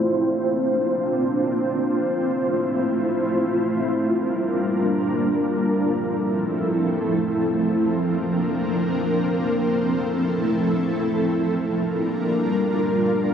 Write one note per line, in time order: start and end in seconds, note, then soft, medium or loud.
0.00 3.82 C4 medium
0.00 5.73 F4 medium
0.00 3.82 C5 medium
0.05 1.94 A#3 medium
0.05 1.94 D4 medium
1.96 3.84 A3 medium
1.96 3.84 E4 medium
3.86 5.75 G3 medium
3.86 5.75 A#3 medium
3.86 5.75 D4 medium
3.86 5.75 A#4 medium
5.77 11.44 F3 medium
5.77 7.65 A3 medium
5.77 7.65 C4 medium
5.77 7.65 E4 medium
5.77 7.65 A4 medium
7.67 9.56 A#3 medium
7.67 11.44 C4 medium
7.67 9.56 D4 medium
7.67 9.56 A#4 medium
9.57 11.46 A3 medium
9.57 11.46 E4 medium
9.57 11.46 A4 medium
11.48 13.34 G3 medium
11.48 13.34 A#3 medium
11.48 13.34 D4 medium
11.48 13.34 F4 medium
11.48 13.34 A#4 medium